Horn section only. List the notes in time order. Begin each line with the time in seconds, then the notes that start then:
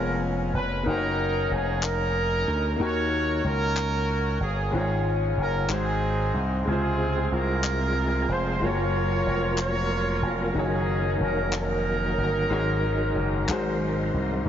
Already playing: C#4 A#4
0.55 B4
0.86 C#4 D#4 A#4
1.52 G#4
1.83 C#4 D#4 A#4
2.81 F#4 A#4 C#5
3.45 C#4 F#4 A#4
4.42 G#4
4.74 C#4 F4 G#4
5.41 A#4
5.71 C4 D#4 G#4
6.68 C4 F4 G#4
7.33 F4 A#4
8.32 C5
8.64 F4 A#4 C#5
9.60 F4 A#4 C#5
10.57 C#4 D#4 G#4
11.24 A#4
11.55 C#4 D#4 A#4